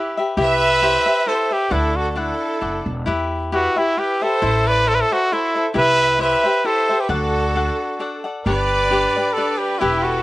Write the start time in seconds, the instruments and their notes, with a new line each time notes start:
Already playing: trumpet E4, cavaquinho E4 G4 B4 E5, violin section G4
0.17 cavaquinho G4 B4 E5
0.37 upright bass C2, cavaquinho E4 G4 E5, trumpet B4, violin section E5
0.82 cavaquinho E4 G4 C5 E5
1.06 cavaquinho G4 C5 E5
1.26 cavaquinho E4 G4 C5 E5, trumpet A4, violin section C5
1.51 cavaquinho G4 C5 E5, trumpet G4, violin section B4
1.70 upright bass D2, cavaquinho D4 A4 D5 F#5, trumpet E4, violin section A4
1.96 trumpet F#4, violin section A4
2.11 trumpet F#4, violin section A4
2.16 cavaquinho D4 A4 D5 F#5, trumpet E4, violin section A4
2.61 upright bass F#1, cavaquinho D4 A4 D5 F#5
2.86 upright bass E1
3.06 upright bass E2, cavaquinho E4 G4 B4 E5
3.52 cavaquinho E4 G4 B4 E5, trumpet F#4, violin section B4
3.76 trumpet E4, cavaquinho G4 B4 E5, violin section G4
3.97 cavaquinho E4 G4 B4 E5, trumpet G4, violin section B4
4.22 cavaquinho G4 B4 E5, trumpet A4, violin section C5
4.42 upright bass A1, cavaquinho E4 A4 C5 E5
4.67 trumpet B4, violin section D5
4.86 cavaquinho E4 A4 C5 E5, trumpet A4, violin section C5
4.92 trumpet B4, violin section D5
5.00 trumpet A4, violin section C5
5.11 trumpet F#4, violin section A4, cavaquinho A4 C5 E5
5.32 cavaquinho E4 A4 C5 E5, trumpet E4, violin section A4
5.55 cavaquinho A4 C5 E5
5.74 upright bass C2, cavaquinho E4 G4 E5, trumpet B4, violin section E5
6.19 cavaquinho E4 G4 C5 E5, trumpet B4, violin section E5
6.43 cavaquinho G4 C5 E5
6.64 cavaquinho E4 G4 C5 E5, trumpet A4, violin section C5
6.89 cavaquinho G4 C5 E5
7.00 trumpet G4, violin section B4
7.09 upright bass D2, cavaquinho D4 A4 D5 F#5, trumpet F#4, violin section A4
7.55 cavaquinho D4 A4 D5 F#5
8.00 cavaquinho D4 A4 D5 F#5
8.24 cavaquinho A4 D5 F#5
8.45 upright bass G1, violin section G3 D4 B4 D5, cavaquinho D4 G4 B4 D5, trumpet B4
8.91 cavaquinho D4 G4 B4 D5
9.16 cavaquinho G4 B4 D5
9.33 trumpet A4, violin section D5
9.37 cavaquinho D4 G4 B4 D5
9.58 trumpet G4, violin section B4
9.79 upright bass E1, trumpet E4, cavaquinho E4 G4 B4 E5, violin section E4 G4
10.03 trumpet F#4, violin section A4